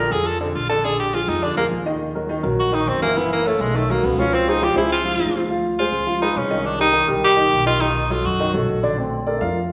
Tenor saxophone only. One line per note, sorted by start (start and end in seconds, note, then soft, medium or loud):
0.00 0.13 A#4 loud
0.12 0.28 G#4 medium
0.27 0.40 A4 loud
0.41 0.57 C4 medium
0.55 0.69 F4 medium
0.70 0.87 A4 loud
0.85 0.99 G#4 medium
1.00 1.16 G4 medium
1.14 1.30 F4 medium
1.29 1.45 D#4 medium
1.44 1.57 D4 medium
1.57 1.66 A#3 loud
2.60 2.75 F#4 medium
2.74 2.90 D#4 medium
2.89 3.01 C4 medium
3.02 3.19 A#3 loud
3.18 3.32 B3 medium
3.33 3.48 A#3 medium
3.47 3.63 A3 medium
3.61 3.78 G#3 medium
3.76 3.92 A3 medium
3.91 4.07 A#3 medium
4.05 4.21 B3 medium
4.20 4.35 C#4 loud
4.34 4.51 C4 medium
4.49 4.65 D#4 loud
4.64 4.77 G4 loud
4.77 4.90 E4 medium
4.92 5.46 F4 medium
5.79 6.19 F4 medium
6.22 6.39 D#4 medium
6.37 6.67 C#4 medium
6.66 6.80 D4 medium
6.81 7.07 D#4 loud
7.25 7.65 G4 loud
7.67 7.82 F4 loud
7.81 8.12 D#4 medium
8.11 8.26 F4 medium
8.25 8.54 F#4 loud